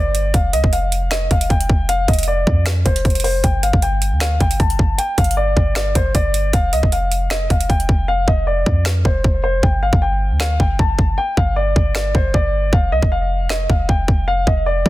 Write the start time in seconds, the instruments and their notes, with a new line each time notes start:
Already playing: 808-style bass G1, grand piano D5
0.15 closed hi-hat
0.34 808-style bass F1, grand piano F5, kick, closed hi-hat
0.53 808-style bass C2, grand piano D#5, closed hi-hat
0.64 808-style bass F1, kick
0.73 grand piano F5, closed hi-hat
0.92 closed hi-hat
1.11 grand piano D#5, finger snap, snare, closed hi-hat
1.31 808-style bass F1, grand piano F5, kick, closed hi-hat
1.41 closed hi-hat
1.50 808-style bass F1, grand piano G5, kick, closed hi-hat
1.60 closed hi-hat
1.70 808-style bass F1, kick
1.89 grand piano F5, closed hi-hat
2.08 808-style bass F1, grand piano D#5, kick, closed hi-hat
2.13 closed hi-hat
2.19 closed hi-hat
2.23 closed hi-hat
2.28 grand piano D5
2.47 808-style bass F2, kick
2.66 finger snap, snare, closed hi-hat
2.85 808-style bass F1, grand piano C5, kick, closed hi-hat
2.96 closed hi-hat
3.05 808-style bass F1, kick, closed hi-hat
3.10 closed hi-hat
3.15 closed hi-hat
3.20 closed hi-hat
3.24 grand piano C5, open hi-hat
3.44 808-style bass G1, grand piano G5, kick, closed hi-hat
3.63 grand piano F5, closed hi-hat
3.73 808-style bass G1, kick
3.82 grand piano G5, closed hi-hat
4.02 closed hi-hat
4.12 808-style bass D2
4.20 grand piano F5, finger snap, snare, closed hi-hat
4.40 808-style bass G1, grand piano G5, kick, closed hi-hat
4.51 closed hi-hat
4.60 808-style bass G1, grand piano A5, kick, closed hi-hat
4.70 closed hi-hat
4.79 808-style bass G1, kick
4.98 grand piano G5, closed hi-hat
5.18 808-style bass G1, grand piano F5, kick, closed hi-hat
5.24 closed hi-hat
5.31 closed hi-hat
5.37 grand piano D5
5.57 808-style bass G1, kick
5.75 grand piano D5, finger snap, snare, closed hi-hat
5.95 808-style bass G1, grand piano C5, kick, closed hi-hat
6.15 808-style bass G1, grand piano D5, kick, closed hi-hat
6.34 closed hi-hat
6.53 808-style bass F1, grand piano F5, kick, closed hi-hat
6.73 808-style bass C2, grand piano D#5, closed hi-hat
6.83 808-style bass F1, kick
6.92 grand piano F5, closed hi-hat
7.12 closed hi-hat
7.30 grand piano D#5, finger snap, snare, closed hi-hat
7.50 808-style bass F1, grand piano F5, kick, closed hi-hat
7.61 closed hi-hat
7.69 808-style bass F1, grand piano G5, kick, closed hi-hat
7.80 closed hi-hat
7.89 808-style bass F1, kick
8.08 grand piano F5
8.28 808-style bass F1, grand piano D#5, kick
8.47 grand piano D5
8.66 808-style bass F2, kick
8.85 finger snap, snare
9.05 808-style bass F1, grand piano C5, kick
9.24 808-style bass F1, kick
9.44 grand piano C5
9.63 808-style bass G1, grand piano G5, kick
9.83 grand piano F5
9.93 808-style bass G1, kick
10.02 grand piano G5
10.31 808-style bass D2
10.40 grand piano F5, finger snap, snare
10.60 808-style bass G1, grand piano G5, kick
10.79 808-style bass G1, grand piano A5, kick
10.99 808-style bass G1, kick
11.18 grand piano G5
11.37 808-style bass G1, grand piano F5, kick
11.56 grand piano D5
11.76 808-style bass G1, kick
11.95 grand piano D5, finger snap, snare
12.15 808-style bass G1, grand piano C5, kick
12.34 808-style bass G1, grand piano D5, kick
12.73 808-style bass F1, grand piano F5, kick
12.92 808-style bass C2, grand piano D#5
13.02 808-style bass F1, kick
13.12 grand piano F5
13.49 grand piano D#5, finger snap, snare
13.70 808-style bass F1, grand piano F5, kick
13.89 808-style bass F1, grand piano G5, kick
14.08 808-style bass F1, kick
14.28 grand piano F5
14.47 808-style bass F1, grand piano D#5, kick
14.66 grand piano D5
14.86 808-style bass F2, kick